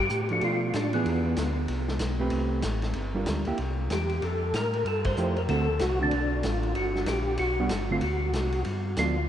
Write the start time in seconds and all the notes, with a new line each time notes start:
0.00 G4
0.09 A2, hi-hat pedal
0.29 F3 A3 D4 F#4, ride
0.41 B2 F4, ride
0.73 A2 D4, snare, hi-hat pedal, ride
0.93 E3 B3 D4 G#4, ride
1.05 E2, ride
1.36 D2, snare, hi-hat pedal, ride
1.68 C2, ride
1.88 snare
1.99 B1, snare, hi-hat pedal, ride
2.20 A3 C4 G4 B4
2.30 C2, ride
2.62 A1, snare, hi-hat pedal, ride
2.82 snare, ride
2.93 G1, ride
3.15 G3 D4 F4 A#4
3.26 D2, snare, hi-hat pedal, ride
3.45 D2 A#3 E4 G4, ride
3.58 C2, ride
3.90 E2 G4, snare, hi-hat pedal, ride
4.09 ride
4.22 F2 A4, ride
4.53 A2 A#4, snare, hi-hat pedal, ride
4.73 ride
4.85 G2 A4, ride
5.04 C5, kick, ride
5.17 F2 F3 A3 E4 G4, hi-hat pedal
5.36 A#4, ride
5.48 D2 D3 A3 C4 F#4 A4, ride
5.79 C2 F#4, snare, hi-hat pedal, ride
6.01 D3 A3 C4 D4 F#4
6.11 B1, ride
6.43 A1 F4, snare, hi-hat pedal, ride
6.63 ride
6.75 G1 F#4, ride
6.95 snare
7.06 A#1 G4, snare, hi-hat pedal, ride
7.38 B1 F#4, ride
7.60 G3 B3 D4 F#4
7.69 G1, snare, hi-hat pedal, ride
7.91 D3 A3 C4 F4
8.01 D2 F#4, ride
8.33 C2, snare, hi-hat pedal, ride
8.52 ride
8.65 G2, ride
8.97 D2 F3 B3 D4 F4, snare, hi-hat pedal, ride